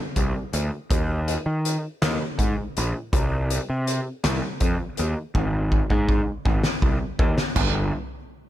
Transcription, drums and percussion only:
0, 0, Header, 1, 2, 480
1, 0, Start_track
1, 0, Tempo, 738916
1, 590, Time_signature, 6, 3, 24, 8
1, 5516, End_track
2, 0, Start_track
2, 0, Title_t, "Drums"
2, 105, Note_on_c, 9, 36, 76
2, 105, Note_on_c, 9, 42, 66
2, 170, Note_off_c, 9, 36, 0
2, 170, Note_off_c, 9, 42, 0
2, 346, Note_on_c, 9, 42, 70
2, 411, Note_off_c, 9, 42, 0
2, 588, Note_on_c, 9, 36, 101
2, 589, Note_on_c, 9, 42, 84
2, 653, Note_off_c, 9, 36, 0
2, 653, Note_off_c, 9, 42, 0
2, 831, Note_on_c, 9, 42, 73
2, 896, Note_off_c, 9, 42, 0
2, 1073, Note_on_c, 9, 42, 66
2, 1138, Note_off_c, 9, 42, 0
2, 1312, Note_on_c, 9, 42, 83
2, 1313, Note_on_c, 9, 38, 100
2, 1377, Note_off_c, 9, 42, 0
2, 1378, Note_off_c, 9, 38, 0
2, 1552, Note_on_c, 9, 36, 79
2, 1554, Note_on_c, 9, 42, 66
2, 1616, Note_off_c, 9, 36, 0
2, 1619, Note_off_c, 9, 42, 0
2, 1797, Note_on_c, 9, 42, 59
2, 1862, Note_off_c, 9, 42, 0
2, 2033, Note_on_c, 9, 36, 101
2, 2034, Note_on_c, 9, 42, 81
2, 2098, Note_off_c, 9, 36, 0
2, 2099, Note_off_c, 9, 42, 0
2, 2277, Note_on_c, 9, 42, 66
2, 2342, Note_off_c, 9, 42, 0
2, 2517, Note_on_c, 9, 42, 61
2, 2582, Note_off_c, 9, 42, 0
2, 2754, Note_on_c, 9, 38, 98
2, 2754, Note_on_c, 9, 42, 90
2, 2818, Note_off_c, 9, 42, 0
2, 2819, Note_off_c, 9, 38, 0
2, 2991, Note_on_c, 9, 42, 64
2, 2994, Note_on_c, 9, 36, 77
2, 3056, Note_off_c, 9, 42, 0
2, 3059, Note_off_c, 9, 36, 0
2, 3231, Note_on_c, 9, 42, 60
2, 3296, Note_off_c, 9, 42, 0
2, 3475, Note_on_c, 9, 36, 100
2, 3540, Note_off_c, 9, 36, 0
2, 3714, Note_on_c, 9, 36, 73
2, 3779, Note_off_c, 9, 36, 0
2, 3834, Note_on_c, 9, 36, 62
2, 3899, Note_off_c, 9, 36, 0
2, 3954, Note_on_c, 9, 36, 82
2, 4019, Note_off_c, 9, 36, 0
2, 4193, Note_on_c, 9, 36, 86
2, 4258, Note_off_c, 9, 36, 0
2, 4310, Note_on_c, 9, 38, 77
2, 4375, Note_off_c, 9, 38, 0
2, 4432, Note_on_c, 9, 36, 85
2, 4497, Note_off_c, 9, 36, 0
2, 4672, Note_on_c, 9, 36, 102
2, 4737, Note_off_c, 9, 36, 0
2, 4792, Note_on_c, 9, 38, 84
2, 4857, Note_off_c, 9, 38, 0
2, 4910, Note_on_c, 9, 43, 100
2, 4910, Note_on_c, 9, 49, 88
2, 4911, Note_on_c, 9, 36, 87
2, 4975, Note_off_c, 9, 43, 0
2, 4975, Note_off_c, 9, 49, 0
2, 4976, Note_off_c, 9, 36, 0
2, 5516, End_track
0, 0, End_of_file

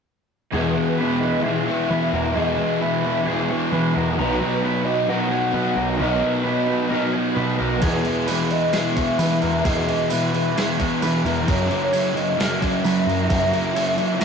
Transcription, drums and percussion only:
0, 0, Header, 1, 2, 480
1, 0, Start_track
1, 0, Tempo, 455927
1, 557, Time_signature, 4, 2, 24, 8
1, 15000, End_track
2, 0, Start_track
2, 0, Title_t, "Drums"
2, 8230, Note_on_c, 9, 49, 83
2, 8236, Note_on_c, 9, 36, 119
2, 8335, Note_off_c, 9, 49, 0
2, 8341, Note_off_c, 9, 36, 0
2, 8475, Note_on_c, 9, 49, 61
2, 8580, Note_off_c, 9, 49, 0
2, 8712, Note_on_c, 9, 54, 95
2, 8716, Note_on_c, 9, 49, 89
2, 8818, Note_off_c, 9, 54, 0
2, 8821, Note_off_c, 9, 49, 0
2, 8955, Note_on_c, 9, 49, 60
2, 9061, Note_off_c, 9, 49, 0
2, 9191, Note_on_c, 9, 49, 78
2, 9197, Note_on_c, 9, 38, 109
2, 9297, Note_off_c, 9, 49, 0
2, 9302, Note_off_c, 9, 38, 0
2, 9441, Note_on_c, 9, 36, 76
2, 9442, Note_on_c, 9, 49, 61
2, 9546, Note_off_c, 9, 36, 0
2, 9548, Note_off_c, 9, 49, 0
2, 9677, Note_on_c, 9, 49, 88
2, 9683, Note_on_c, 9, 54, 107
2, 9782, Note_off_c, 9, 49, 0
2, 9788, Note_off_c, 9, 54, 0
2, 9812, Note_on_c, 9, 38, 32
2, 9917, Note_off_c, 9, 38, 0
2, 9917, Note_on_c, 9, 49, 60
2, 10023, Note_off_c, 9, 49, 0
2, 10161, Note_on_c, 9, 36, 116
2, 10163, Note_on_c, 9, 49, 91
2, 10267, Note_off_c, 9, 36, 0
2, 10268, Note_off_c, 9, 49, 0
2, 10409, Note_on_c, 9, 49, 66
2, 10515, Note_off_c, 9, 49, 0
2, 10632, Note_on_c, 9, 54, 111
2, 10639, Note_on_c, 9, 49, 90
2, 10737, Note_off_c, 9, 54, 0
2, 10744, Note_off_c, 9, 49, 0
2, 10893, Note_on_c, 9, 49, 60
2, 10998, Note_off_c, 9, 49, 0
2, 11135, Note_on_c, 9, 49, 85
2, 11141, Note_on_c, 9, 38, 116
2, 11241, Note_off_c, 9, 49, 0
2, 11246, Note_off_c, 9, 38, 0
2, 11368, Note_on_c, 9, 36, 83
2, 11371, Note_on_c, 9, 49, 59
2, 11473, Note_off_c, 9, 36, 0
2, 11477, Note_off_c, 9, 49, 0
2, 11604, Note_on_c, 9, 54, 112
2, 11608, Note_on_c, 9, 49, 77
2, 11709, Note_off_c, 9, 54, 0
2, 11713, Note_off_c, 9, 49, 0
2, 11857, Note_on_c, 9, 49, 59
2, 11962, Note_off_c, 9, 49, 0
2, 12088, Note_on_c, 9, 36, 114
2, 12090, Note_on_c, 9, 49, 79
2, 12193, Note_off_c, 9, 36, 0
2, 12195, Note_off_c, 9, 49, 0
2, 12328, Note_on_c, 9, 49, 55
2, 12433, Note_off_c, 9, 49, 0
2, 12561, Note_on_c, 9, 54, 103
2, 12568, Note_on_c, 9, 49, 82
2, 12666, Note_off_c, 9, 54, 0
2, 12673, Note_off_c, 9, 49, 0
2, 12815, Note_on_c, 9, 49, 58
2, 12920, Note_off_c, 9, 49, 0
2, 13057, Note_on_c, 9, 49, 83
2, 13063, Note_on_c, 9, 38, 117
2, 13163, Note_off_c, 9, 49, 0
2, 13168, Note_off_c, 9, 38, 0
2, 13290, Note_on_c, 9, 36, 79
2, 13295, Note_on_c, 9, 49, 60
2, 13395, Note_off_c, 9, 36, 0
2, 13400, Note_off_c, 9, 49, 0
2, 13522, Note_on_c, 9, 54, 105
2, 13541, Note_on_c, 9, 49, 84
2, 13627, Note_off_c, 9, 54, 0
2, 13647, Note_off_c, 9, 49, 0
2, 13787, Note_on_c, 9, 49, 60
2, 13893, Note_off_c, 9, 49, 0
2, 14004, Note_on_c, 9, 36, 121
2, 14005, Note_on_c, 9, 49, 83
2, 14110, Note_off_c, 9, 36, 0
2, 14110, Note_off_c, 9, 49, 0
2, 14251, Note_on_c, 9, 49, 62
2, 14356, Note_off_c, 9, 49, 0
2, 14488, Note_on_c, 9, 54, 102
2, 14491, Note_on_c, 9, 49, 90
2, 14593, Note_off_c, 9, 54, 0
2, 14597, Note_off_c, 9, 49, 0
2, 14718, Note_on_c, 9, 49, 60
2, 14823, Note_off_c, 9, 49, 0
2, 14959, Note_on_c, 9, 49, 86
2, 14964, Note_on_c, 9, 38, 120
2, 15000, Note_off_c, 9, 38, 0
2, 15000, Note_off_c, 9, 49, 0
2, 15000, End_track
0, 0, End_of_file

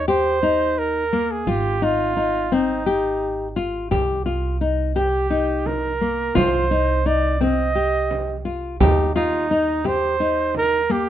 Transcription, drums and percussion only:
0, 0, Header, 1, 2, 480
1, 0, Start_track
1, 0, Key_signature, -3, "minor"
1, 0, Tempo, 697674
1, 1015, Time_signature, 7, 3, 24, 8
1, 7631, End_track
2, 0, Start_track
2, 0, Title_t, "Frame drum"
2, 2694, Note_on_c, 9, 64, 46
2, 2763, Note_off_c, 9, 64, 0
2, 3415, Note_on_c, 9, 64, 37
2, 3484, Note_off_c, 9, 64, 0
2, 3895, Note_on_c, 9, 64, 42
2, 3964, Note_off_c, 9, 64, 0
2, 4377, Note_on_c, 9, 64, 52
2, 4446, Note_off_c, 9, 64, 0
2, 5100, Note_on_c, 9, 64, 44
2, 5168, Note_off_c, 9, 64, 0
2, 5335, Note_on_c, 9, 64, 19
2, 5404, Note_off_c, 9, 64, 0
2, 5579, Note_on_c, 9, 64, 44
2, 5648, Note_off_c, 9, 64, 0
2, 6057, Note_on_c, 9, 64, 62
2, 6126, Note_off_c, 9, 64, 0
2, 6773, Note_on_c, 9, 64, 43
2, 6842, Note_off_c, 9, 64, 0
2, 7012, Note_on_c, 9, 64, 17
2, 7080, Note_off_c, 9, 64, 0
2, 7256, Note_on_c, 9, 64, 39
2, 7324, Note_off_c, 9, 64, 0
2, 7631, End_track
0, 0, End_of_file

